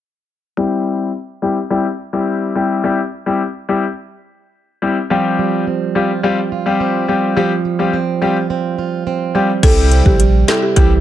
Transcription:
0.57 G3 C4 E4 G4
1.42 G3 C4 E4 G4
1.70 G3 C4 E4 G4
2.13 G3 C4 E4 G4
2.55 G3 C4 E4 G4
2.84 G3 C4 E4 G4
3.26 G3 C4 E4 G4
3.69 G3 C4 E4 G4
4.82 G3 C4 E4 G4
5.10 F3 G3 C4 F4 G4
5.39 G3
5.67 C4
5.95 G3 C4 F4 G4
6.23 G3 C4 F4 G4
6.52 F4
6.66 G3 C4 F4 G4
6.80 C4
7.08 G3 C4 F4 G4
7.37 F3 G3 C4 F4 G4
7.65 G3
7.79 G3 C4 F4 G4
7.93 C4
8.22 G3 C4 F4 G4
8.50 C4
8.78 F4
9.07 C4
9.35 G3 C4 F4 G4
9.63 C2 C3 G3 C4 E4 G4 A4, kick, closed hi-hat, crash
9.91 C4, closed hi-hat
10.06 A#1 G4, kick
10.20 G3, closed hi-hat
10.48 G3 C4 E4 G4 A4, snare, clap, closed hi-hat
10.62 G4
10.76 C2 E3 G3 C4 E4 G4, kick, closed hi-hat

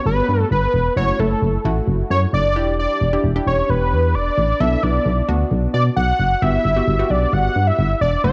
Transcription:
Already playing: B3 F#4 G4
0.06 G1 B4
0.29 G2
0.51 G1 B4
0.74 E1
0.97 F#1 A3 E4 F#4 C#5
1.19 F#1 A3 E4 A4
1.42 F#1
1.65 A1 A3 E4 F#4
1.87 F#1
2.10 F#2 C#5
2.33 F#1 D5
2.56 E1 D4 E4 G4
2.79 D5
3.01 E1
3.13 D4 E4 G4
3.24 E1
3.36 D4 E4 G4
3.47 E1 C#5
3.70 E1 B4
3.92 E2
4.15 E1 D5
4.38 A1
4.60 B1 B3 D4 A4 E5
4.83 B1 B3 D4 E4 D5
5.06 B1
5.29 D2 B3 D4 F#4
5.51 B1
5.74 B2 D5
5.96 B1 F#5
6.19 F#1
6.42 G1 B3 F#4 G4 E5
6.65 G1
6.76 B3 F#4 G4
6.88 G1
6.99 B3 F#4 G4
7.10 B1 D5
7.33 G1 F#5
7.56 G2
7.67 E5
7.79 G1
8.01 E1 D5
8.24 F#1 A3 E4 F#4 C#5

